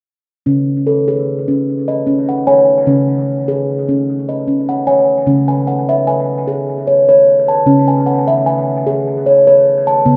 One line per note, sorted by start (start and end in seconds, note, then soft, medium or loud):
0.46 2.83 C#3 medium
0.46 0.86 C#4 medium
0.87 1.48 A4 soft
1.08 1.48 G#4 medium
1.48 1.88 C#4 medium
1.88 2.47 D#5 soft
2.07 2.47 C#4 medium
2.29 2.87 F#5 soft
2.47 2.87 C#5 medium
2.47 3.08 G#5 soft
2.86 5.23 C#3 medium
2.86 3.27 C#4 medium
3.48 3.88 G#4 medium
3.89 4.28 C#4 medium
4.29 4.87 D#5 soft
4.47 4.87 C#4 medium
4.69 5.27 F#5 soft
4.87 5.27 C#5 soft
4.87 5.47 G#5 soft
5.26 7.62 C#3 medium
5.26 5.67 C#4 medium
5.48 6.06 G#5 soft
5.67 6.28 F#5 soft
5.89 6.29 E5 medium
6.07 6.68 G#5 medium
6.48 6.87 G#4 medium
6.87 7.07 C#5 medium
7.09 7.48 C#5 medium
7.48 8.07 A5 soft
7.66 10.02 C#3 medium
7.66 8.07 C#4 medium
7.88 8.45 G#5 soft
8.06 8.68 F#5 soft
8.28 8.68 E5 medium
8.46 9.07 G#5 medium
8.87 9.26 G#4 medium
9.26 9.46 C#5 medium
9.47 9.87 C#5 medium
9.87 10.17 A5 medium
10.05 10.17 C#3 medium
10.05 10.17 B3 medium